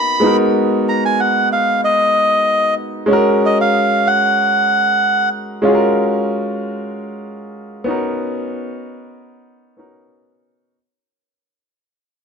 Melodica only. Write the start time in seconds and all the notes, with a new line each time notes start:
Already playing: B5
0.89 A#5
1.05 G#5
1.20 F#5
1.52 F5
1.84 D#5
3.46 D#5
3.61 F5
4.07 F#5